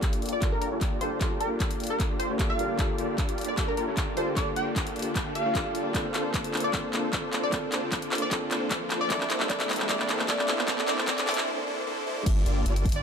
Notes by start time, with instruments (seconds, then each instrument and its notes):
Already playing: string section D3 A#3 F4 G4, grand piano G3 A#3 D4 F4 A4
0.02 supersaw synth A#3 D4 F4 G4 D5, kick, clap, closed hi-hat
0.13 closed hi-hat
0.22 closed hi-hat
0.26 closed hi-hat
0.29 digital synth lead D5, closed hi-hat
0.40 grand piano G3 A#3 D4 F4, kick, clap, closed hi-hat
0.44 grand piano A4
0.52 supersaw synth A#3 D4 F4 G4 D5, digital synth lead A#4
0.61 supersaw synth A#3 D4 F4 G4 D5, digital synth lead A#4, closed hi-hat
0.72 supersaw synth A#3 D4 F4 G4 D5
0.81 kick, clap, closed hi-hat
1.00 grand piano G3 A#3 D4 F4 A4, digital synth lead C5, closed hi-hat
1.19 grand piano G3 A#3 D4 F4 A4, supersaw synth A#3 D4 F4 G4 D5, kick, clap, closed hi-hat
1.40 supersaw synth A#3 D4 F4 G4 D5, digital synth lead A#4, closed hi-hat
1.60 supersaw synth D4 F4 G4 D5, kick, clap, closed hi-hat
1.71 closed hi-hat
1.80 closed hi-hat
1.84 closed hi-hat
1.87 digital synth lead A#4, closed hi-hat
2.00 kick, clap, closed hi-hat
2.10 supersaw synth A#3 D4 F4 G4 D5
2.19 supersaw synth A#3 D4 F4 G4 D5, digital synth lead C5, closed hi-hat
2.30 supersaw synth A#3 D4 F4 G4 D5
2.38 grand piano G3 A#3 D4 F4 A4, kick, clap, closed hi-hat
2.50 digital synth lead F5
2.58 grand piano G3 A#3 D4 F4 A#4, closed hi-hat
2.77 grand piano G3 A#3 D4 F4, supersaw synth A#3 D4 F4 G4 D5, string section A4, kick, clap, closed hi-hat
2.81 grand piano A4
2.98 supersaw synth A#3 D4 F4 G4 D5, closed hi-hat
3.18 supersaw synth A#3 D4 F4 G4 D5, kick, clap, closed hi-hat
3.29 closed hi-hat
3.38 closed hi-hat
3.41 closed hi-hat
3.44 digital synth lead D5, closed hi-hat
3.55 grand piano G3 A#3 D4 F4, kick, clap, closed hi-hat
3.60 grand piano A4
3.68 supersaw synth A#3 D4 F4 G4 D5, digital synth lead A#4
3.77 supersaw synth A#3 D4 F4 G4 D5, digital synth lead A#4, closed hi-hat
3.88 supersaw synth A#3 D4 F4 G4 D5
3.97 kick, clap, closed hi-hat
4.16 grand piano G3 A#3 D4 F4 A4, digital synth lead C5, closed hi-hat
4.34 grand piano G3 A#3 D4 F4, supersaw synth A#3, digital synth lead D5, kick, clap, closed hi-hat
4.39 grand piano A4
4.56 supersaw synth A#3 D4 F4 G4 D5, digital synth lead G5, closed hi-hat
4.76 supersaw synth D4, kick, clap, closed hi-hat
4.87 closed hi-hat
4.96 closed hi-hat
4.99 closed hi-hat
5.02 closed hi-hat
5.16 kick, clap, closed hi-hat
5.26 supersaw synth A#3 D4 F4 G4 D5
5.35 supersaw synth A#3 D4 F4 G4 D5, digital synth lead F5, closed hi-hat
5.46 supersaw synth A#3 D4 F4 G4 D5
5.54 grand piano G3 A#3 D4 F4 A4, kick, clap, closed hi-hat
5.75 closed hi-hat
5.92 grand piano A#3 C4 D4 F4, supersaw synth A#3 D4 F4, string section C4, kick, clap, closed hi-hat, riser
5.97 grand piano A4
6.14 supersaw synth A#3 D4 F4 A4 C5, clap, closed hi-hat
6.34 supersaw synth A4 C5, kick, clap, closed hi-hat
6.44 closed hi-hat
6.54 clap, closed hi-hat
6.57 closed hi-hat
6.60 digital synth lead D5, closed hi-hat
6.71 grand piano A#3 C4 D4 F4, supersaw synth A#3 D4 F4 A4 C5, kick, clap, closed hi-hat
6.75 grand piano A4
6.93 supersaw synth A#3 D4 F4 A4 C5, clap, closed hi-hat
7.13 supersaw synth A#3 D4 F4 A4 C5, kick, clap, closed hi-hat
7.33 clap, closed hi-hat
7.43 digital synth lead D5
7.50 grand piano A#3 C4 D4 F4 A4, supersaw synth A#3 D4 F4 A4 C5, kick, clap, closed hi-hat
7.72 supersaw synth A#3 D4 F4 A4 C5, clap, closed hi-hat
7.92 supersaw synth A#3 D4 F4 A4 C5, kick, clap, closed hi-hat
8.02 closed hi-hat
8.12 clap, closed hi-hat
8.15 closed hi-hat
8.18 digital synth lead D5, closed hi-hat
8.29 grand piano A#3 C4 D4 F4 A4, supersaw synth A#3 D4 F4 A4 C5, kick, clap, closed hi-hat
8.51 supersaw synth A#3 D4 F4 A4 C5, clap, closed hi-hat
8.71 supersaw synth A#3 D4 F4 A4 C5, kick, clap, closed hi-hat
8.90 clap, closed hi-hat
9.01 digital synth lead D5
9.08 string section E3 A#3 G4, grand piano A#3 C4 D4 E4 A4, supersaw synth A#3 D4 E4 A4 C5, digital synth lead D5, kick, clap, closed hi-hat
9.21 clap
9.30 supersaw synth A#3 D4 E4 A4 C5, clap, closed hi-hat
9.40 clap
9.48 grand piano A#3 C4 D4 E4 A4, supersaw synth A#3 D4 E4 A4 C5, digital synth lead D5, kick, clap, closed hi-hat
9.60 clap, closed hi-hat
9.69 supersaw synth A#3 D4 E4 A4 C5, clap, closed hi-hat
9.73 closed hi-hat
9.76 clap, closed hi-hat
9.87 grand piano A#3 C4 D4 E4 A4, supersaw synth A#3 D4 E4 A4, digital synth lead D5, kick, clap, closed hi-hat
10.00 clap
10.09 supersaw synth A#3 D4 E4 A4 C5, clap, closed hi-hat
10.19 clap
10.27 grand piano A#3 C4 D4 E4, supersaw synth A#3 E4 A4 C5, digital synth lead D5, kick, clap, closed hi-hat
10.31 grand piano A4
10.39 clap
10.48 supersaw synth A#3 D4 E4 A4 C5, clap, closed hi-hat
10.59 clap
10.66 grand piano A#3 C4 D4 E4, supersaw synth A#3 D4 E4 A4 C5, digital synth lead D5, kick, clap, closed hi-hat
10.70 grand piano A4
10.78 clap
10.86 grand piano A#3 C4 D4 E4, supersaw synth A#3 D4 E4 A4 C5, digital synth lead D5, clap, closed hi-hat
10.90 grand piano A4
10.98 clap
11.05 grand piano A#3 C4 D4 E4, supersaw synth A#3 D4 E4 A4 C5, digital synth lead D5, kick, clap, closed hi-hat
11.10 grand piano A4
11.18 clap, closed hi-hat
11.25 grand piano A#3 C4 D4 E4 A4, supersaw synth A#3 D4 E4 A4 C5, digital synth lead D5, clap, closed hi-hat
11.31 closed hi-hat
11.34 clap, closed hi-hat
11.47 supersaw synth A#3 D4 E4 A4 C5
11.67 supersaw synth A#3 D4 E4 A4 C5
11.87 supersaw synth A#3 D4 E4 A4 C5
12.07 supersaw synth A#3 D4 E4 A4 C5
12.26 sub bass G1, string section D3 G3 A#3 F4, supersaw synth A#3 D4, kick, closed hi-hat, crash
12.46 sub bass G1, supersaw synth A#3 D4 F4 G4 D5, closed hi-hat
12.66 sub bass G1, supersaw synth A#3 D4 F4 G4 D5, closed hi-hat
12.76 closed hi-hat
12.85 kick, closed hi-hat
12.89 closed hi-hat
12.92 digital synth lead D5, closed hi-hat